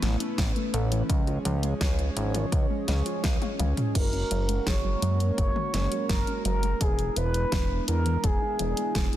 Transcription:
Already playing: A3 B3 C#4 E4 B4
0.02 A1 E3, snare, closed hi-hat
0.20 C#4, closed hi-hat
0.38 A1 E3, kick, snare, closed hi-hat
0.56 A3, closed hi-hat
0.74 A1 A4, closed hi-hat
0.92 E3, closed hi-hat
1.09 C#2 F3 G#3 G#4 C#5, kick, closed hi-hat
1.27 F4, closed hi-hat
1.45 C#2 F3, closed hi-hat
1.63 G#3, closed hi-hat
1.81 C#2 C#5, kick, snare, closed hi-hat
1.99 F3, closed hi-hat
2.17 G#1 F3, closed hi-hat
2.34 F4, closed hi-hat, mid tom
2.52 C#2 F3, kick, closed hi-hat
2.70 G#3
2.88 C#2 G#3, snare, closed hi-hat
3.06 F4, closed hi-hat
3.24 C#2 F3, kick, snare, closed hi-hat, high tom
3.42 F5, closed hi-hat, high tom
3.59 C#2 G#3, closed hi-hat, mid tom
3.77 C#4, closed hi-hat, mid tom
3.95 F#1 F#3 A#4, kick, closed hi-hat, crash
4.13 C#4, closed hi-hat
4.31 F#1 F#3, closed hi-hat
4.49 G#3, closed hi-hat
4.67 F#1 G#4 C#5, kick, snare, closed hi-hat
4.84 F#3
5.02 F#2 F#3, closed hi-hat
5.20 C#4, closed hi-hat
5.38 F#1 F#3 C#5, kick, closed hi-hat
5.56 G#3, mid tom
5.74 F#1 G#4, snare, closed hi-hat
5.92 F#3, closed hi-hat
6.09 F#1 F#3 A#4, kick, snare, closed hi-hat
6.27 C#4, closed hi-hat
6.45 F#1 F#3 A#4, closed hi-hat
6.63 G#3, closed hi-hat
6.81 E1 B3 D4 E4 G#4, kick, closed hi-hat
6.99 E3, closed hi-hat
7.16 E1 E3 B4, closed hi-hat
7.34 D4, closed hi-hat
7.52 E1 E3, kick, snare, closed hi-hat
7.70 G#3
7.88 E2 G#4 A#4, closed hi-hat
8.06 E3, closed hi-hat
8.24 E1 E3 G#4, kick, closed hi-hat
8.42 D4
8.59 E1 E3, closed hi-hat
8.77 G#3, closed hi-hat
8.95 E1 G#4, kick, snare, closed hi-hat
9.13 E3, closed hi-hat

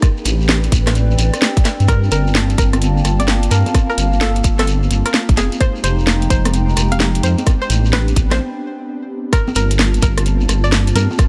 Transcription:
Already playing: G4
0.02 C4 D4 B4, kick, cross-stick, closed hi-hat, shekere
0.17 shekere
0.23 A1 B4, closed hi-hat, shekere
0.41 shekere
0.49 snare, shekere
0.54 D5
0.64 closed hi-hat, shekere
0.72 A1, kick, closed hi-hat, shekere
0.87 G5, cross-stick, snare, closed hi-hat, shekere
0.95 closed hi-hat, shekere
1.11 shekere
1.18 A1, closed hi-hat, shekere
1.34 cross-stick, closed hi-hat, shekere
1.42 snare, shekere
1.57 kick, closed hi-hat, shekere
1.65 snare, closed hi-hat, shekere
1.80 G2, closed hi-hat, shekere
1.88 A#3 F4 A#4 A5, kick, cross-stick, closed hi-hat, shekere
2.03 shekere
2.12 G1 A#4, closed hi-hat, shekere
2.20 A#3 A5
2.27 F5, shekere
2.35 snare, shekere
2.50 closed hi-hat, shekere
2.58 G1 A#4, kick, closed hi-hat, shekere
2.73 cross-stick, closed hi-hat, high conga, shekere
2.82 closed hi-hat, shekere
2.97 shekere
3.05 G1, cross-stick, closed hi-hat, shekere
3.20 D5, closed hi-hat, high conga, shekere
3.28 snare, shekere
3.43 closed hi-hat, shekere
3.51 G2 A#4, closed hi-hat, shekere
3.66 closed hi-hat, high conga, shekere
3.74 kick, cross-stick, closed hi-hat, shekere
3.90 A#4, shekere
3.98 G1, closed hi-hat, shekere
4.13 shekere
4.20 A4, snare, shekere
4.35 closed hi-hat, shekere
4.44 G1, kick, closed hi-hat, shekere
4.59 A4, cross-stick, snare, closed hi-hat, high conga, shekere
4.67 closed hi-hat, shekere
4.83 shekere
4.91 G1, closed hi-hat, shekere
5.06 A#4, cross-stick, closed hi-hat, shekere
5.14 snare, shekere
5.29 G1, kick, closed hi-hat, shekere
5.37 F1 G#3 D#4 G4 G#4, snare, closed hi-hat, high conga, shekere
5.52 closed hi-hat, shekere
5.59 G#3 C5 A#5, kick, cross-stick, closed hi-hat, shekere
5.70 G5
5.75 shekere
5.84 F1 C5, closed hi-hat, shekere
5.99 shekere
6.07 snare, shekere
6.22 closed hi-hat, shekere
6.30 F1 C5, kick, closed hi-hat, shekere
6.45 cross-stick, closed hi-hat, high conga, shekere
6.54 closed hi-hat, shekere
6.69 shekere
6.77 F1, cross-stick, closed hi-hat, shekere
6.92 F5, closed hi-hat, high conga, shekere
7.00 snare, shekere
7.15 closed hi-hat, shekere
7.23 F2 C5, closed hi-hat, shekere
7.38 closed hi-hat, high conga, shekere
7.46 B3 C4 D4, kick, cross-stick, closed hi-hat, shekere
7.62 C5, shekere
7.70 A1, closed hi-hat, shekere
7.85 shekere
7.93 B4, snare, shekere
8.08 closed hi-hat, shekere
8.16 A1, kick, closed hi-hat, shekere
8.31 C5, cross-stick, snare, closed hi-hat, high conga, shekere
9.33 A#3 C4 F4 A#4 A5, kick, cross-stick, closed hi-hat, shekere
9.48 high conga, shekere
9.55 G1 A#4, closed hi-hat, shekere
9.71 closed hi-hat, shekere
9.79 snare, shekere
9.94 closed hi-hat, shekere
10.02 G1 A#4, kick, closed hi-hat, shekere
10.18 cross-stick, closed hi-hat, shekere
10.25 closed hi-hat, shekere
10.41 shekere
10.49 G1, cross-stick, closed hi-hat, shekere
10.64 D5, shekere
10.72 snare, shekere
10.87 closed hi-hat, shekere
10.95 G2 A#4, closed hi-hat, high conga, shekere
11.11 high conga, shekere
11.18 kick, cross-stick, closed hi-hat, shekere

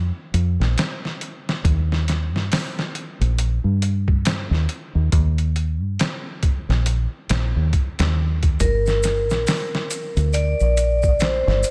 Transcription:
Already playing: F2
0.34 F2, closed hi-hat
0.60 A#1, snare
0.78 snare, closed hi-hat
1.05 snare
1.21 closed hi-hat
1.49 snare
1.64 D#2, kick, closed hi-hat
1.92 snare
2.08 snare, closed hi-hat
2.34 G2, snare
2.52 snare, open hi-hat
2.79 snare
2.95 closed hi-hat
3.21 A#1, closed hi-hat
3.38 closed hi-hat
3.64 G2
3.82 closed hi-hat
4.08 kick
4.25 snare, closed hi-hat
4.51 D#2, snare
4.69 closed hi-hat
4.95 D#2
5.12 D#2, kick, closed hi-hat
5.38 closed hi-hat
5.56 closed hi-hat
5.81 G2
5.99 snare, closed hi-hat
6.43 kick, closed hi-hat
6.69 A#1, snare
6.86 closed hi-hat
7.29 A#1, snare, closed hi-hat
7.56 D#2
7.73 kick, closed hi-hat
7.99 D#2, snare, closed hi-hat
8.43 kick, closed hi-hat
8.60 G1 A#4, kick, closed hi-hat, maracas
8.86 snare, maracas
9.03 snare, closed hi-hat, maracas
9.30 A#1, snare, maracas
9.47 snare, open hi-hat, maracas
9.75 snare
9.91 closed hi-hat, maracas
10.16 D2, closed hi-hat, maracas
10.33 D5, closed hi-hat, maracas
10.60 A#1, maracas
10.77 closed hi-hat, maracas
11.02 kick, maracas
11.19 C5, snare, closed hi-hat, maracas
11.47 G1, snare
11.63 closed hi-hat, maracas

